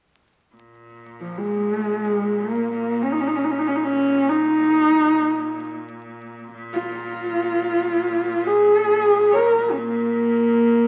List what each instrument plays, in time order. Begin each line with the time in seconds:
0.56 cello A#2
1.21 horsehead fiddle F3
1.37 horsehead fiddle G#3
2.39 horsehead fiddle A#3
2.74 horsehead fiddle A#3
3.02 horsehead fiddle C#4
3.12 horsehead fiddle D#4
3.20 horsehead fiddle C#4
3.27 horsehead fiddle D#4
3.36 horsehead fiddle C#4
3.44 horsehead fiddle D#4
3.51 horsehead fiddle C#4
3.59 horsehead fiddle D#4
3.67 horsehead fiddle C#4
3.75 horsehead fiddle D#4
3.84 horsehead fiddle C#4
4.30 horsehead fiddle D#4
6.54 cello A#2
6.73 horsehead fiddle F4
8.47 horsehead fiddle G#4
9.32 horsehead fiddle A#4 C#5
9.71 horsehead fiddle C#4
9.77 horsehead fiddle A#3